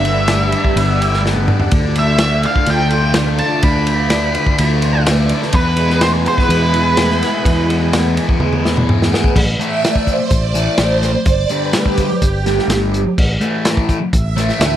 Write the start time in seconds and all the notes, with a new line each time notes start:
Already playing: G1 G2 D4 G4 D5 E5 B5
0.05 B3, ride
0.28 D4, snare, ride
0.52 G3, ride
0.65 kick
0.76 G1 B3, ride
1.01 G4, ride
1.13 snare
1.24 B3, snare
1.36 high tom
1.48 D4, mid tom
1.60 floor tom
1.71 D2 D3 F4 A4 D5, kick, ride
1.96 A3 E5, ride
2.18 D4, snare, ride
2.43 D3 F5, ride
2.56 kick
2.66 D2 A3 G5, ride
2.91 F4, ride
3.14 A3, snare, ride
3.38 D4 A5, ride
3.63 D2 D3 B4 B5, kick, ride
3.86 A3, ride
4.10 D4, snare, ride
4.35 D3, ride
4.47 kick
4.58 D2 A3, ride
4.82 F4, ride
5.06 A3, snare, ride
5.29 D4, ride
5.42 snare
5.53 E2 B3 E4 G#4 B4, kick, ride
5.77 G#3, ride
5.90 snare
6.01 B3 C5, snare, ride
6.26 E3 B4, ride
6.38 kick, snare
6.49 E2 G#3, ride
6.73 E4, ride
6.97 G#3, snare, ride
7.10 snare
7.21 B3, snare, ride
7.45 E2, kick, ride
7.68 G#3, ride
7.93 B3, snare, ride
8.15 E3, ride
8.29 kick
8.39 E2 G#3, high tom
8.53 high tom
8.63 E4, snare
8.77 mid tom
8.87 G#3, mid tom
9.02 snare
9.12 B3, snare
9.24 kick
9.36 A1, kick, crash
9.59 A2 E3 A3, closed hi-hat
9.84 A2 E3 A3, snare, closed hi-hat
9.96 kick
10.07 kick, closed hi-hat
10.30 A1 D5, kick, closed hi-hat
10.54 A2 E3 A3, closed hi-hat
10.78 A1 A2 E3 A3 C5, snare, closed hi-hat
11.03 snare, closed hi-hat
11.26 G1, kick, closed hi-hat
11.49 G2 D3 G3, closed hi-hat
11.73 G2 D3 G3 G4, snare, closed hi-hat
11.86 kick
11.97 kick, closed hi-hat
12.22 G1 G4, kick, closed hi-hat
12.46 G2 D3 G3, snare, closed hi-hat
12.59 snare
12.68 G1 G2 D3 G3, snare, closed hi-hat
12.94 closed hi-hat
13.18 A1, kick, crash
13.40 A2 E3 A3, closed hi-hat
13.65 A2 E3 A3, snare, closed hi-hat
13.77 kick
13.89 kick, closed hi-hat
14.13 A1, kick, closed hi-hat
14.36 A2 E3 A3, snare, closed hi-hat
14.49 snare
14.60 D2 A2 E3 A3, snare, closed hi-hat